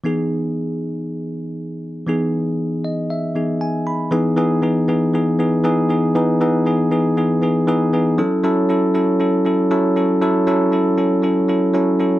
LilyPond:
\new Staff \with { instrumentName = "Tine electric piano" } { \time 4/4 \key e \major \tempo 4 = 118 << { r1 | r4. dis''8 e''4 gis''8 b''8 | r1 | r1 |
r1 | r1 | } \\ { <e b dis' gis'>1 | <e b dis' gis'>2~ <e b dis' gis'>8 <e b dis' gis'>4. | <e b dis' gis'>8 <e b dis' gis'>8 <e b dis' gis'>8 <e b dis' gis'>8 <e b dis' gis'>8 <e b dis' gis'>8 <e b dis' gis'>8 <e b dis' gis'>8 | <e b dis' gis'>8 <e b dis' gis'>8 <e b dis' gis'>8 <e b dis' gis'>8 <e b dis' gis'>8 <e b dis' gis'>8 <e b dis' gis'>8 <e b dis' gis'>8 |
<fis cis' e' a'>8 <fis cis' e' a'>8 <fis cis' e' a'>8 <fis cis' e' a'>8 <fis cis' e' a'>8 <fis cis' e' a'>8 <fis cis' e' a'>8 <fis cis' e' a'>8 | <fis cis' e' a'>8 <fis cis' e' a'>8 <fis cis' e' a'>8 <fis cis' e' a'>8 <fis cis' e' a'>8 <fis cis' e' a'>8 <fis cis' e' a'>8 <fis cis' e' a'>8 | } >> }